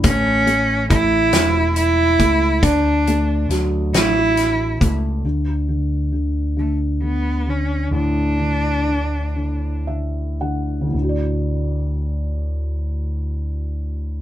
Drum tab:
HH |xxxxxx|xxxxxx|------|------|
SD |---o--|--ooo-|------|------|
BD |o-o--o|o----o|------|------|

HH |------|
SD |------|
BD |------|